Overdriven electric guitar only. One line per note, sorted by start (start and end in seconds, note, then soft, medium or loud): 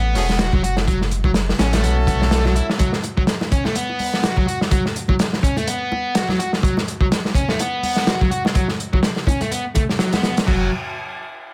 0.00 0.38 B3 medium
0.39 0.52 F#4 medium
0.53 0.62 F#3 loud
0.63 0.75 F#4 medium
0.88 0.99 F#3 medium
1.25 1.30 F#3 medium
1.59 1.70 C#4 loud
1.73 1.82 A3 medium
1.83 1.96 B3 medium
2.07 2.20 B3 loud
2.32 2.44 A3 medium
2.45 2.54 F#3 medium
2.55 2.67 E4 medium
2.79 2.91 F#3 medium
3.17 3.22 F#3 medium
3.52 3.63 C#4 loud
3.65 3.74 A3 medium
3.76 4.23 B3 medium
4.24 4.36 F#4 medium
4.37 4.45 F#3 loud
4.47 4.59 F#4 medium
4.71 4.83 F#3 medium
5.09 5.14 F#3 medium
5.43 5.55 C#4 loud
5.57 5.66 A3 medium
5.67 6.14 B3 medium
6.15 6.28 F#4 medium
6.29 6.37 F#3 loud
6.39 6.51 F#4 medium
6.63 6.75 F#3 medium
7.01 7.06 F#3 medium
7.35 7.47 C#4 loud
7.49 7.58 A3 medium
7.60 8.06 B3 medium
8.07 8.20 F#4 medium
8.21 8.30 F#3 loud
8.31 8.43 F#4 medium
8.55 8.67 F#3 medium
8.93 8.98 F#3 medium
9.27 9.39 C#4 loud
9.41 9.50 A3 medium
9.51 9.64 B3 medium
9.75 9.82 A3 loud
9.99 10.10 F#3 loud
10.13 10.21 B3 medium
10.23 10.35 B3 medium
10.47 10.69 F#3 medium